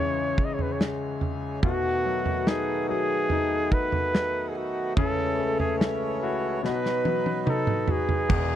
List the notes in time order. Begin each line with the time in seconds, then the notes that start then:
Already playing: C#2 G#2 C#3 E3 G#3 C#4 G#4 C#5
0.38 kick
0.45 D#5
0.54 C#5
0.59 B4, floor tom
0.72 C#5
0.81 snare
1.21 floor tom
1.63 B2 D#3 A3 B3 F#4, kick, floor tom
2.05 F#3
2.26 floor tom
2.47 D#4 G#4, snare
2.89 F#3 G#4
3.30 D#4, floor tom
3.72 B4, kick
3.92 floor tom
4.15 snare
4.49 G#4
4.58 F#4
4.97 C#2 C#3 E3 C#4 A4 C#5, kick, floor tom
5.39 A3
5.60 G#4, floor tom
5.80 C#4, snare
6.23 E4 F#4
6.63 B2 F#3 B3 D#4 B4, snare
6.86 snare
7.05 F#3, high tom
7.26 high tom
7.46 D#4 A4, mid tom
7.67 mid tom
7.88 F#4 G#4, floor tom
8.09 floor tom
8.29 E1 E2 E3 B3 D#4 G#4, kick, floor tom, crash